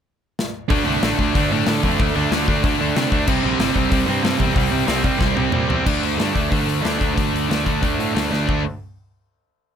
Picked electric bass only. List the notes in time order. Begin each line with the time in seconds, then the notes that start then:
0.70 D2
0.86 C2
1.03 A1
1.19 D2
1.35 D2
1.52 A2
1.68 A2
1.83 F2
1.99 D2
2.16 D2
2.31 D2
2.65 D2
2.80 D2
2.96 C3
3.12 D2
3.28 C2
3.44 A#1
3.59 G1
3.76 C2
3.92 C2
4.08 G2
4.24 G2
4.40 E2
4.56 C2
4.72 C2
4.88 C2
5.21 C2
5.37 C2
5.54 A#2
5.69 E2
5.86 D2
6.02 D2
6.18 G2
6.36 D2
6.52 D2
6.66 D2
6.84 D2
7.01 D2
7.18 D2
7.34 D2
7.50 D2
7.67 D2
7.83 D2
7.99 A2
8.16 D2
8.33 D2
8.49 D2